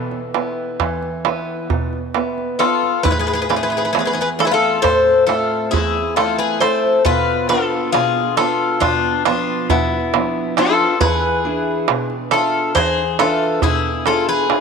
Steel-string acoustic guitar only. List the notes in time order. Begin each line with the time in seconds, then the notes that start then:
Already playing: B2 B3 E4 B4
0.34 B3 E4 B4
0.80 E3
1.25 B3 E4 B4
1.70 B2
2.15 B3 B4 E5
2.59 B3
3.05 A2
3.49 A3 C4 E4
3.94 E2
4.39 A3 C4 E5
4.84 A2
5.28 A3 C4 E5
5.73 E2
6.17 A3 C4 E4
6.62 A3 C4 E4
7.06 B2
7.50 B3 D4 F4
7.95 B2
8.39 B3 D4 F4
8.83 B2
9.26 F3 B3 D4
9.71 B2
10.14 F3 B3 D4
10.58 B3 D4 F4
11.01 E3
11.45 D4 E4 G#4
11.89 B2
12.32 D4 E5
12.76 E3
13.19 D4 B4 E5
13.62 B2
14.06 D4 E4 G#4
14.49 D4 E4 G#4